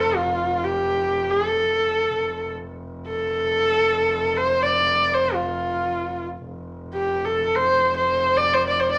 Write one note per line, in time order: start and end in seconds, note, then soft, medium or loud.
0.00 2.15 F1 medium
0.00 0.18 A4 medium
0.17 0.65 F4 medium
0.63 1.32 G4 medium
1.31 2.52 A4 medium
2.16 6.45 F1 medium
3.08 4.38 A4 medium
4.37 4.64 C5 medium
4.63 5.16 D5 medium
5.14 5.36 C5 medium
5.34 6.26 F4 medium
6.46 8.98 F1 medium
6.94 7.27 G4 medium
7.25 7.57 A4 medium
7.55 7.95 C5 medium
7.96 8.38 C5 medium
8.37 8.55 D5 medium
8.53 8.67 C5 medium
8.67 8.81 D5 medium
8.80 8.91 C5 medium
8.92 8.98 D5 medium